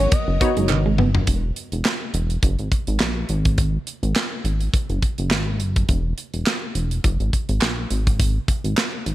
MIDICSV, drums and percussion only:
0, 0, Header, 1, 2, 480
1, 0, Start_track
1, 0, Tempo, 576923
1, 1060, Time_signature, 4, 2, 24, 8
1, 7610, End_track
2, 0, Start_track
2, 0, Title_t, "Drums"
2, 97, Note_on_c, 9, 42, 95
2, 99, Note_on_c, 9, 36, 121
2, 180, Note_off_c, 9, 42, 0
2, 183, Note_off_c, 9, 36, 0
2, 341, Note_on_c, 9, 36, 94
2, 341, Note_on_c, 9, 42, 82
2, 424, Note_off_c, 9, 36, 0
2, 424, Note_off_c, 9, 42, 0
2, 472, Note_on_c, 9, 42, 53
2, 555, Note_off_c, 9, 42, 0
2, 574, Note_on_c, 9, 39, 84
2, 579, Note_on_c, 9, 48, 60
2, 658, Note_off_c, 9, 39, 0
2, 662, Note_off_c, 9, 48, 0
2, 818, Note_on_c, 9, 45, 96
2, 901, Note_off_c, 9, 45, 0
2, 953, Note_on_c, 9, 43, 97
2, 1037, Note_off_c, 9, 43, 0
2, 1057, Note_on_c, 9, 42, 91
2, 1060, Note_on_c, 9, 36, 106
2, 1141, Note_off_c, 9, 42, 0
2, 1143, Note_off_c, 9, 36, 0
2, 1300, Note_on_c, 9, 42, 62
2, 1384, Note_off_c, 9, 42, 0
2, 1432, Note_on_c, 9, 42, 47
2, 1515, Note_off_c, 9, 42, 0
2, 1539, Note_on_c, 9, 39, 85
2, 1543, Note_off_c, 9, 39, 0
2, 1543, Note_on_c, 9, 38, 112
2, 1543, Note_on_c, 9, 39, 80
2, 1626, Note_off_c, 9, 38, 0
2, 1626, Note_off_c, 9, 39, 0
2, 1779, Note_on_c, 9, 42, 69
2, 1862, Note_off_c, 9, 42, 0
2, 1913, Note_on_c, 9, 42, 47
2, 1996, Note_off_c, 9, 42, 0
2, 2019, Note_on_c, 9, 42, 86
2, 2020, Note_on_c, 9, 36, 105
2, 2102, Note_off_c, 9, 42, 0
2, 2103, Note_off_c, 9, 36, 0
2, 2151, Note_on_c, 9, 42, 34
2, 2235, Note_off_c, 9, 42, 0
2, 2260, Note_on_c, 9, 36, 87
2, 2261, Note_on_c, 9, 42, 70
2, 2343, Note_off_c, 9, 36, 0
2, 2344, Note_off_c, 9, 42, 0
2, 2390, Note_on_c, 9, 42, 49
2, 2473, Note_off_c, 9, 42, 0
2, 2493, Note_on_c, 9, 39, 74
2, 2496, Note_off_c, 9, 39, 0
2, 2496, Note_on_c, 9, 39, 80
2, 2499, Note_on_c, 9, 38, 101
2, 2580, Note_off_c, 9, 39, 0
2, 2583, Note_off_c, 9, 38, 0
2, 2735, Note_on_c, 9, 42, 65
2, 2819, Note_off_c, 9, 42, 0
2, 2871, Note_on_c, 9, 42, 51
2, 2874, Note_on_c, 9, 36, 93
2, 2954, Note_off_c, 9, 42, 0
2, 2957, Note_off_c, 9, 36, 0
2, 2977, Note_on_c, 9, 42, 87
2, 2979, Note_on_c, 9, 36, 107
2, 3060, Note_off_c, 9, 42, 0
2, 3062, Note_off_c, 9, 36, 0
2, 3219, Note_on_c, 9, 42, 65
2, 3302, Note_off_c, 9, 42, 0
2, 3353, Note_on_c, 9, 42, 46
2, 3437, Note_off_c, 9, 42, 0
2, 3459, Note_on_c, 9, 39, 89
2, 3462, Note_on_c, 9, 38, 113
2, 3463, Note_off_c, 9, 39, 0
2, 3463, Note_on_c, 9, 39, 81
2, 3545, Note_off_c, 9, 38, 0
2, 3546, Note_off_c, 9, 39, 0
2, 3701, Note_on_c, 9, 42, 72
2, 3784, Note_off_c, 9, 42, 0
2, 3832, Note_on_c, 9, 42, 47
2, 3915, Note_off_c, 9, 42, 0
2, 3940, Note_on_c, 9, 36, 109
2, 3940, Note_on_c, 9, 42, 82
2, 4023, Note_off_c, 9, 36, 0
2, 4023, Note_off_c, 9, 42, 0
2, 4073, Note_on_c, 9, 42, 34
2, 4156, Note_off_c, 9, 42, 0
2, 4180, Note_on_c, 9, 36, 84
2, 4181, Note_on_c, 9, 42, 72
2, 4264, Note_off_c, 9, 36, 0
2, 4265, Note_off_c, 9, 42, 0
2, 4310, Note_on_c, 9, 42, 51
2, 4393, Note_off_c, 9, 42, 0
2, 4414, Note_on_c, 9, 39, 74
2, 4416, Note_off_c, 9, 39, 0
2, 4416, Note_on_c, 9, 39, 80
2, 4420, Note_on_c, 9, 38, 100
2, 4500, Note_off_c, 9, 39, 0
2, 4503, Note_off_c, 9, 38, 0
2, 4657, Note_on_c, 9, 42, 67
2, 4740, Note_off_c, 9, 42, 0
2, 4793, Note_on_c, 9, 42, 49
2, 4794, Note_on_c, 9, 36, 88
2, 4876, Note_off_c, 9, 42, 0
2, 4878, Note_off_c, 9, 36, 0
2, 4897, Note_on_c, 9, 42, 87
2, 4900, Note_on_c, 9, 36, 102
2, 4981, Note_off_c, 9, 42, 0
2, 4983, Note_off_c, 9, 36, 0
2, 5139, Note_on_c, 9, 42, 65
2, 5222, Note_off_c, 9, 42, 0
2, 5272, Note_on_c, 9, 42, 49
2, 5355, Note_off_c, 9, 42, 0
2, 5379, Note_on_c, 9, 39, 89
2, 5381, Note_off_c, 9, 39, 0
2, 5381, Note_on_c, 9, 39, 83
2, 5382, Note_on_c, 9, 38, 113
2, 5465, Note_off_c, 9, 38, 0
2, 5465, Note_off_c, 9, 39, 0
2, 5618, Note_on_c, 9, 42, 68
2, 5701, Note_off_c, 9, 42, 0
2, 5751, Note_on_c, 9, 42, 47
2, 5834, Note_off_c, 9, 42, 0
2, 5858, Note_on_c, 9, 42, 88
2, 5859, Note_on_c, 9, 36, 111
2, 5941, Note_off_c, 9, 42, 0
2, 5943, Note_off_c, 9, 36, 0
2, 5992, Note_on_c, 9, 42, 35
2, 6075, Note_off_c, 9, 42, 0
2, 6100, Note_on_c, 9, 36, 82
2, 6101, Note_on_c, 9, 42, 68
2, 6183, Note_off_c, 9, 36, 0
2, 6184, Note_off_c, 9, 42, 0
2, 6230, Note_on_c, 9, 42, 48
2, 6313, Note_off_c, 9, 42, 0
2, 6334, Note_on_c, 9, 39, 81
2, 6338, Note_off_c, 9, 39, 0
2, 6338, Note_on_c, 9, 39, 76
2, 6342, Note_on_c, 9, 38, 96
2, 6422, Note_off_c, 9, 39, 0
2, 6425, Note_off_c, 9, 38, 0
2, 6577, Note_on_c, 9, 42, 69
2, 6660, Note_off_c, 9, 42, 0
2, 6713, Note_on_c, 9, 42, 49
2, 6714, Note_on_c, 9, 36, 89
2, 6797, Note_off_c, 9, 36, 0
2, 6797, Note_off_c, 9, 42, 0
2, 6819, Note_on_c, 9, 36, 110
2, 6819, Note_on_c, 9, 42, 95
2, 6902, Note_off_c, 9, 36, 0
2, 6902, Note_off_c, 9, 42, 0
2, 7057, Note_on_c, 9, 36, 93
2, 7058, Note_on_c, 9, 42, 63
2, 7140, Note_off_c, 9, 36, 0
2, 7142, Note_off_c, 9, 42, 0
2, 7193, Note_on_c, 9, 42, 48
2, 7276, Note_off_c, 9, 42, 0
2, 7300, Note_on_c, 9, 39, 92
2, 7302, Note_off_c, 9, 39, 0
2, 7302, Note_on_c, 9, 39, 82
2, 7303, Note_on_c, 9, 38, 106
2, 7385, Note_off_c, 9, 39, 0
2, 7386, Note_off_c, 9, 38, 0
2, 7541, Note_on_c, 9, 42, 72
2, 7610, Note_off_c, 9, 42, 0
2, 7610, End_track
0, 0, End_of_file